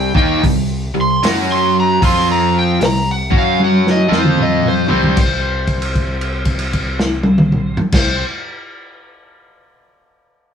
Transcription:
0.00 0.12 C2 medium
0.00 0.13 C3 medium
0.00 0.14 G3 loud
0.00 0.14 C4 loud
0.00 0.15 G5 medium
0.15 0.42 D#2 loud
0.15 0.43 D#3 medium
0.15 0.43 A#3 loud
0.15 0.43 D#4 loud
0.15 0.44 G5 loud
0.15 kick loud
0.43 0.91 C2 medium
0.43 0.84 C3 medium
0.43 0.85 G3 medium
0.43 kick medium
0.43 open hi-hat medium
0.94 1.21 C2 medium
0.94 1.17 C3 medium
0.94 1.18 G3 medium
1.01 1.25 C6 loud
1.23 1.98 F#2 medium
1.23 2.01 F#3 medium
1.23 2.02 C#4 medium
1.23 2.02 F#4 loud
1.23 snare loud
1.23 open hi-hat medium
1.52 1.77 C6 loud
1.80 2.04 A#5 medium
2.02 2.78 F2 medium
2.02 2.80 F3 medium
2.02 2.80 C4 medium
2.02 2.81 F4 loud
2.02 2.29 C6 medium
2.02 kick loud
2.02 open hi-hat medium
2.31 2.56 A#5 medium
2.59 2.82 G5 loud
2.80 3.28 C2 medium
2.80 3.21 C3 medium
2.80 3.22 G3 medium
2.80 snare loud
2.80 open hi-hat medium
2.85 3.09 A#5 loud
3.11 3.35 F#5 medium
3.30 4.07 F#2 loud
3.30 4.08 F#3 medium
3.30 4.09 C#4 loud
3.30 4.09 F#4 loud
3.30 kick loud
3.38 3.62 F5 loud
3.60 high tom medium
3.64 3.88 F#5 medium
3.87 snare medium
3.91 4.14 D#5 medium
4.08 4.86 F2 loud
4.08 4.87 F3 medium
4.08 4.87 C4 loud
4.08 4.87 F4 medium
4.08 snare medium
4.17 4.40 C5 medium
4.25 mid tom medium
4.38 mid tom medium
4.43 4.66 D#5 medium
4.63 mid tom medium
4.68 5.18 C5 loud
4.88 5.16 C2 medium
4.88 5.16 C3 medium
4.88 5.17 G3 medium
4.88 5.17 C4 medium
4.88 floor tom medium
5.03 floor tom medium
5.17 7.78 C2 medium
5.17 7.79 C5 loud
5.17 kick loud
5.17 crash medium
5.67 kick medium
5.67 crash soft
5.82 crash soft
5.95 kick medium
5.95 crash soft
6.21 crash soft
6.45 kick medium
6.45 crash medium
6.59 crash soft
6.73 kick medium
6.73 crash soft
7.00 snare medium
7.23 high tom medium
7.38 mid tom loud
7.52 mid tom loud
7.77 floor tom loud
7.92 8.21 C2 medium
7.92 8.23 C5 loud
7.92 kick loud
7.92 snare loud
7.92 crash loud

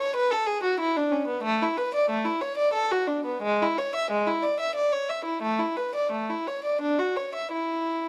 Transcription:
0.00 0.15 C#5 medium
0.16 0.31 B4 medium
0.31 0.47 A4 medium
0.47 0.63 G#4 medium
0.63 0.79 F#4 medium
0.80 0.95 E4 medium
0.97 1.12 D4 medium
1.12 1.27 C#4 medium
1.27 1.43 B3 medium
1.43 1.59 A3 medium
1.62 1.77 E4 medium
1.77 1.93 B4 medium
1.95 2.09 D5 medium
2.10 2.25 A3 medium
2.25 2.41 E4 medium
2.41 2.57 C#5 medium
2.57 2.73 D5 medium
2.73 2.89 A4 medium
2.91 3.07 F#4 medium
3.07 3.24 D4 medium
3.25 3.42 B3 medium
3.43 3.60 G#3 medium
3.62 3.78 E4 medium
3.78 3.94 C#5 medium
3.95 4.11 E5 medium
4.11 4.27 G#3 medium
4.27 4.44 E4 medium
4.42 4.60 D5 medium
4.60 4.76 E5 medium
4.75 4.92 D5 medium
4.92 5.09 C#5 medium
5.09 5.26 E5 medium
5.25 5.42 E4 medium
5.42 5.59 A3 medium
5.59 5.77 E4 medium
5.77 5.95 B4 medium
5.95 6.12 D5 medium
6.12 6.29 A3 soft
6.30 6.47 E4 soft
6.47 6.64 C#5 soft
6.64 6.81 D5 soft
6.81 6.99 D4 medium
6.99 7.17 F#4 soft
7.17 7.35 C#5 soft
7.35 7.53 E5 soft
7.53 8.09 E4 soft

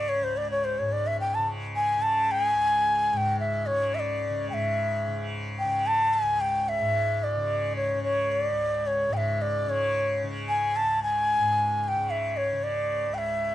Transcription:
0.00 0.21 C#2 medium
0.00 0.79 G#2 medium
0.00 1.38 C#3 medium
0.00 0.10 D5 medium
0.09 0.25 C#5 medium
0.21 2.54 C#2 medium
0.21 0.38 C5 medium
0.37 0.50 D5 medium
0.51 0.66 C#5 medium
0.64 0.80 C5 medium
0.79 3.12 G#2 medium
0.79 0.94 C#5 medium
0.93 1.08 D5 medium
1.07 1.20 E5 medium
1.20 1.36 G5 medium
1.35 1.97 C#3 medium
1.35 1.47 A5 medium
1.76 2.04 G#5 medium
1.97 3.71 C#3 medium
2.02 2.33 A5 medium
2.31 2.44 G5 loud
2.44 3.13 G#5 loud
2.54 6.22 C#2 medium
3.13 4.51 G#2 medium
3.13 3.18 G#5 medium
3.17 3.39 G5 medium
3.40 3.68 E5 medium
3.66 3.96 C#5 medium
3.71 4.30 C#3 medium
3.95 4.00 E5 medium
3.99 4.49 D5 medium
4.30 5.08 C#3 medium
4.50 6.79 G#2 medium
4.50 5.28 E5 medium
4.50 4.55 G5 medium
5.08 5.65 C#3 medium
5.59 5.88 G5 medium
5.65 7.37 C#3 medium
5.87 6.15 A5 loud
6.14 6.42 G#5 medium
6.23 8.52 C#2 medium
6.41 6.70 G5 medium
6.69 7.25 E5 medium
6.79 9.09 G#2 medium
7.23 7.76 D5 medium
7.37 7.94 C#3 medium
7.76 8.02 C#5 medium
7.94 9.66 C#3 medium
8.04 8.32 C#5 medium
8.32 8.43 C#5 medium
8.43 8.88 D5 medium
8.52 10.82 C#2 medium
8.87 9.15 C#5 medium
9.09 11.38 G#2 medium
9.13 9.43 E5 medium
9.13 9.18 G5 medium
9.42 9.71 D5 medium
9.66 10.24 C#3 medium
9.66 10.23 C#5 medium
10.24 11.96 C#3 medium
10.49 10.78 G#5 medium
10.76 11.02 A5 medium
10.82 13.08 C#2 medium
11.03 11.84 G#5 loud
11.39 13.55 G#2 medium
11.84 11.89 G#5 medium
11.88 12.12 G5 loud
11.96 12.53 C#3 medium
12.10 12.38 E5 medium
12.37 12.65 C#5 medium
12.53 13.55 C#3 medium
12.64 13.16 D5 medium
13.08 13.55 C#2 medium
13.14 13.20 G5 medium
13.19 13.55 E5 medium

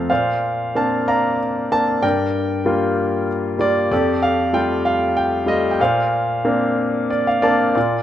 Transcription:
0.00 0.12 F2 medium
0.00 0.12 F3 soft
0.00 0.12 A3 soft
0.00 0.12 C4 soft
0.00 0.12 A4 soft
0.00 0.10 C5 soft
0.00 0.10 F5 medium
0.00 0.12 A5 medium
0.00 0.12 A#5 medium
0.10 2.00 A#2 soft
0.10 1.03 C5 soft
0.10 1.04 D5 soft
0.10 0.77 F5 medium
0.75 1.38 A#3 soft
0.75 1.38 C4 soft
0.75 1.38 D4 soft
0.75 1.09 A5 medium
1.08 1.99 D5 soft
1.08 1.99 F5 soft
1.08 1.74 A#5 medium
1.72 2.02 A#3 soft
1.72 2.03 C4 soft
1.72 2.03 D4 soft
1.72 2.01 A5 medium
2.02 3.87 G2 medium
2.02 3.56 A#4 soft
2.02 3.56 D5 soft
2.02 3.65 G5 medium
2.65 3.27 G3 soft
2.65 3.27 A#3 soft
2.65 3.27 F4 medium
3.58 3.90 G3 soft
3.58 3.90 A#3 soft
3.58 3.90 F4 soft
3.58 3.90 D5 medium
3.91 5.75 F2 medium
3.91 4.82 G4 soft
3.91 4.81 A4 medium
3.91 4.21 D5 medium
4.23 4.55 F5 medium
4.53 5.14 G3 soft
4.53 5.14 A3 soft
4.53 5.14 F4 medium
4.53 4.86 G5 medium
4.85 5.17 F5 medium
5.17 5.49 G5 medium
5.46 5.78 G3 soft
5.46 5.78 A3 soft
5.46 5.78 F4 soft
5.46 5.71 D#5 medium
5.71 5.79 G5 medium
5.80 7.72 A#2 medium
5.80 7.40 C5 soft
5.80 7.09 D5 soft
5.80 7.26 F5 medium
6.44 7.08 A#3 soft
6.44 7.08 C4 soft
6.44 7.09 D4 medium
7.10 7.26 D5 medium
7.27 7.42 F5 medium
7.42 7.75 A#3 soft
7.42 7.75 C4 soft
7.42 7.75 D4 soft
7.42 7.74 D5 medium
7.42 7.74 A5 medium
7.75 8.03 A#2 medium
7.75 8.03 F4 soft
7.75 8.03 D5 medium

